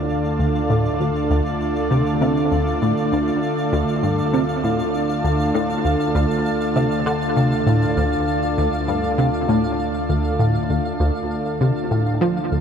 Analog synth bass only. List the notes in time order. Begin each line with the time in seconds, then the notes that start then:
0.39 D2
0.70 A2
1.00 D2
1.30 D2
1.91 C3
2.21 C3
2.51 D2
2.82 A2
3.12 D2
3.72 D2
4.03 G2
4.33 C3
4.63 A2
5.24 D2
5.54 A2
5.84 D2
6.15 D2
6.76 C3
7.06 D3
7.36 C3
7.66 A2
7.97 D2
8.58 D2
8.88 G2
9.18 C3
9.48 A2
10.09 D2
10.39 A2
10.70 D2
11.00 D2
11.61 C3
11.91 A2
12.21 F3
12.51 D2